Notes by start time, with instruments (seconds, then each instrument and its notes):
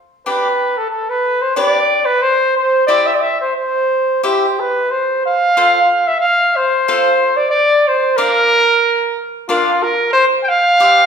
0.26 cavaquinho D4 G4 B4 D5, trumpet B4
0.77 trumpet A4
0.90 trumpet A4
1.09 trumpet B4
1.41 trumpet C5
1.56 cavaquinho D4 G4 B4 D5, trumpet D5
2.05 trumpet B4
2.22 trumpet C5
2.57 trumpet C5
2.87 cavaquinho E4 G4 C5 E5, trumpet D5
3.06 trumpet E5
3.15 trumpet D5
3.21 trumpet E5
3.41 trumpet C5
3.56 trumpet C5
4.23 cavaquinho E4 G4 C5 E5, trumpet G4
4.60 trumpet B4
4.91 trumpet C5
5.26 trumpet F5
5.57 cavaquinho F4 A4 C5 F5
6.07 trumpet E5
6.21 trumpet F5
6.56 trumpet C5
6.88 cavaquinho F4 A4 C5 F5
7.36 trumpet D5
7.50 trumpet D5
7.88 trumpet C5
8.17 cavaquinho D4 A#4 D5 F5, trumpet A#4
9.49 cavaquinho D4 A#4 D5 F5, trumpet F4
9.83 trumpet A#4
10.13 trumpet C5
10.43 trumpet G5
10.48 trumpet F5
10.80 cavaquinho D4 G4 C5 E5